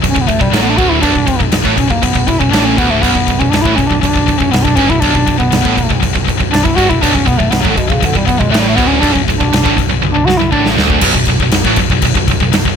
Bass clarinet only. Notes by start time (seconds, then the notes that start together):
0.10 C#4
0.21 B3
0.28 A3
0.41 G3
0.55 F#3
0.62 B3
0.70 D4
0.77 F#4
0.90 E4
1.02 D4
1.79 C#4
1.90 A#3
2.03 B3
2.28 E4
2.40 C#4
2.52 D4
2.66 C#4
2.78 B3
2.91 A3
3.02 B3
3.39 C#4
3.51 D4
3.62 E4
3.76 C#4
3.88 D4
4.01 D4
4.39 C#4
4.52 B3
4.63 D4
4.76 C#4
4.90 E4
5.00 D4
5.39 B3
6.52 D4
6.64 E4
6.76 F#4
6.90 E4
7.02 D4
7.15 C#4
7.26 B3
7.38 A3
7.50 B3
7.61 F#3
7.69 D3
7.77 B2
7.90 C#3
8.04 D3
8.17 G3
8.26 B3
8.39 G#3
8.51 A3
8.59 G3
8.68 A3
8.76 B3
8.87 C#4
9.00 D4
9.13 C#4
9.25 A3
9.37 D4
10.12 D4
10.26 F#4
10.38 E4
10.52 D4